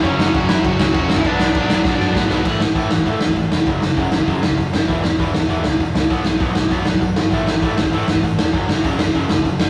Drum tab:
CC |x---x---x---x---|x---x-----------|x---------------|----------------|
HH |----------------|----------------|----o---o---o---|o---o---o---o---|
SD |--o---o---o---o-|--o---o-o-o-o-o-|--o---o---o---o-|--o---o---o---o-|
BD |o---o---o---o--o|o---o---o---o---|o---o--oo--oo---|o---o--oo--oo---|

CC |----------------|----------------|----------------|----------------|
HH |o---o---o---o---|o---o---o---o---|o---o---o---o---|o---o---o---o---|
SD |--o---o---o---o-|--o---o---o---o-|--o---o---o---o-|--o---o---o---o-|
BD |o---o--oo--oo---|o---o--oo--oo---|o---o--oo--oo---|o---o--oo--oo---|